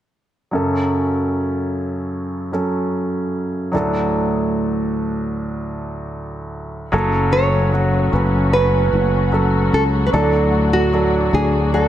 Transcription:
0.51 grand piano F#2 C#3 F#3 C#4 A4
2.52 grand piano F#3 C#4 A4
3.72 grand piano D2 A2 F#3 D4 A4
6.92 fretless electric bass F#1, string section A2 C#3 F#3 C#4 F#4, grand piano C#3 F#3 C#4 A4
7.33 nylon-string guitar C#5
7.72 grand piano F#3 C#4 F#4
8.12 fretless electric bass F#1, grand piano F#3 C#4 B4
8.51 grand piano F#3 C#4 B4, nylon-string guitar B4
8.93 fretless electric bass F#1
9.32 grand piano F#3 C#4 A4
9.73 fretless electric bass C#2, nylon-string guitar A4
10.07 nylon-string guitar B4
10.12 fretless electric bass D2, grand piano A2 F#3 D4 A4, string section A2 D4, nylon-string guitar A4
10.73 nylon-string guitar F#4
10.93 grand piano F#3 D4 A4
11.32 fretless electric bass D2, grand piano F#3 D4 G#4, nylon-string guitar G#4
11.73 grand piano F#3 D4 F#4, nylon-string guitar A4

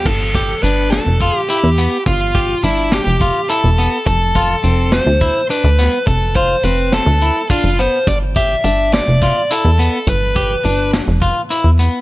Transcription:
0.06 analog synth bass G1, lead electric guitar A4, kick, crash
0.35 clean electric guitar G4, kick, snare, closed hi-hat
0.63 analog synth bass G1, clean electric guitar D4, lead electric guitar B4, closed hi-hat
0.91 lead electric guitar A4, snare, closed hi-hat
1.06 analog synth bass F1
1.21 clean electric guitar F4, kick, closed hi-hat
1.37 lead electric guitar G4
1.49 clean electric guitar E4, lead electric guitar G4, closed hi-hat
1.64 analog synth bass E2
1.78 clean electric guitar B3, closed hi-hat
2.06 analog synth bass G1, lead electric guitar F4, kick, closed hi-hat
2.35 clean electric guitar G4, kick, closed hi-hat
2.63 analog synth bass G1, clean electric guitar D4, lead electric guitar E4, closed hi-hat
2.92 lead electric guitar G4, snare, closed hi-hat
3.07 analog synth bass F1
3.21 clean electric guitar F4, kick, closed hi-hat
3.49 clean electric guitar E4, lead electric guitar A4, closed hi-hat
3.64 analog synth bass E1
3.78 clean electric guitar B3, closed hi-hat
4.06 analog synth bass F1, lead electric guitar A4, kick, closed hi-hat
4.35 clean electric guitar F4, kick, closed hi-hat
4.64 analog synth bass F1, clean electric guitar C4, closed hi-hat
4.92 lead electric guitar C5, snare, closed hi-hat
5.06 analog synth bass D2
5.21 clean electric guitar E4, kick, closed hi-hat
5.50 clean electric guitar D4, lead electric guitar B4, closed hi-hat
5.64 analog synth bass D2
5.79 clean electric guitar B3, snare, closed hi-hat
6.07 analog synth bass F1, lead electric guitar A4, kick, closed hi-hat
6.35 clean electric guitar F4, lead electric guitar C5, kick, closed hi-hat
6.63 analog synth bass F1, clean electric guitar C4, lead electric guitar B4, closed hi-hat
6.92 lead electric guitar A4, snare, closed hi-hat
7.06 analog synth bass D2
7.21 clean electric guitar E4, closed hi-hat
7.50 clean electric guitar D4, lead electric guitar F4, kick, closed hi-hat
7.64 analog synth bass F#1
7.79 clean electric guitar B3, lead electric guitar C5, closed hi-hat
8.07 analog synth bass G1, lead electric guitar D5, kick, closed hi-hat
8.36 clean electric guitar G4, lead electric guitar E5, kick, closed hi-hat
8.64 analog synth bass G1, clean electric guitar D4, lead electric guitar E5, closed hi-hat
8.93 lead electric guitar D5, snare, closed hi-hat
9.08 analog synth bass F1
9.22 clean electric guitar F4, kick, snare, closed hi-hat
9.50 clean electric guitar E4, lead electric guitar A4, closed hi-hat
9.65 analog synth bass E2
9.79 clean electric guitar B3, closed hi-hat
10.07 analog synth bass G1, lead electric guitar B4, kick, closed hi-hat
10.36 clean electric guitar G4, kick, closed hi-hat
10.65 analog synth bass G1, clean electric guitar D4, closed hi-hat
10.93 snare, closed hi-hat
11.08 analog synth bass F1
11.22 clean electric guitar F4, kick, closed hi-hat
11.50 clean electric guitar E4, closed hi-hat
11.64 analog synth bass E2
11.79 clean electric guitar B3, closed hi-hat

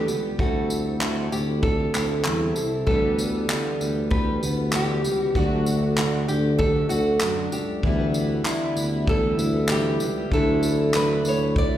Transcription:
Already playing: nylon-string guitar G4
0.07 tuba C#2, steel-string acoustic guitar G3 B3 G4, tambourine
0.38 tuba D2, steel-string acoustic guitar D3 G3 C4 E4 A4, nylon-string guitar F#4, kick
0.70 tambourine
1.00 steel-string acoustic guitar D3 G3 C4 E4 A4, nylon-string guitar F#4, clap
1.32 tuba D2, nylon-string guitar G4, tambourine
1.62 steel-string acoustic guitar G3 C4 E4 A4, nylon-string guitar A4, kick
1.94 tuba D2, steel-string acoustic guitar C4 E4 A4, nylon-string guitar G4, clap, tambourine
2.25 tuba E2, steel-string acoustic guitar D3 G3 C4 E4 A4, clap
2.55 tuba C2, steel-string acoustic guitar C4 E4 A4, tambourine
2.86 tuba D2, steel-string acoustic guitar D3 E3 G3 B3 G4, nylon-string guitar A4, kick
3.19 tambourine
3.48 steel-string acoustic guitar D3 E3 G3 B3 G4, clap, tambourine
3.81 tuba D2, tambourine
4.10 steel-string acoustic guitar E3 G3 B3 G4, nylon-string guitar B4, kick
4.41 tuba D2, steel-string acoustic guitar G3 B3 G4, tambourine
4.72 steel-string acoustic guitar D3 E3 G3 B3 G4, nylon-string guitar G4, clap, tambourine
5.03 tuba C#2, steel-string acoustic guitar G3 B3 G4, tambourine
5.20 nylon-string guitar F#4
5.35 tuba D2, steel-string acoustic guitar D3 F#3 A3 D4 F#4, nylon-string guitar F#4, kick
5.66 tambourine
5.96 steel-string acoustic guitar D3 A3 D4, nylon-string guitar F#4, clap, tambourine
6.28 tuba D2, nylon-string guitar G4, tambourine
6.59 steel-string acoustic guitar F#3 A3 D4 F#4, nylon-string guitar A4, kick
6.89 tuba D2, steel-string acoustic guitar A3 D4 F#4, nylon-string guitar F#4, tambourine
7.21 tuba F#2, steel-string acoustic guitar D3 F#3 A3 D4 F#4, clap, tambourine
7.52 tuba C#2, steel-string acoustic guitar A3 D4, nylon-string guitar G4, tambourine
7.83 tuba D2, steel-string acoustic guitar D3 E3 G3 B3 E4, kick
8.14 tambourine
8.44 steel-string acoustic guitar D3 E3 G3 B3 E4, clap, tambourine
8.76 tuba D2, tambourine
9.06 steel-string acoustic guitar E3 G3 B3 E4, nylon-string guitar A4, kick
9.38 tuba D2, steel-string acoustic guitar G3 B3 E4, tambourine
9.69 steel-string acoustic guitar D3 E3 G3 B3 E4, nylon-string guitar G4, clap, tambourine
10.00 tuba C#2, steel-string acoustic guitar G3 B3 E4, tambourine
10.32 tuba D2, steel-string acoustic guitar D3 F#3 A3 D4 E4, nylon-string guitar A4, kick
10.63 tambourine
10.94 steel-string acoustic guitar D3 F#3 A3 D4 E4, nylon-string guitar B4, clap, tambourine
11.25 tuba D2, nylon-string guitar C#5, tambourine
11.55 steel-string acoustic guitar F#3 A3 D4 E4, nylon-string guitar D5, kick

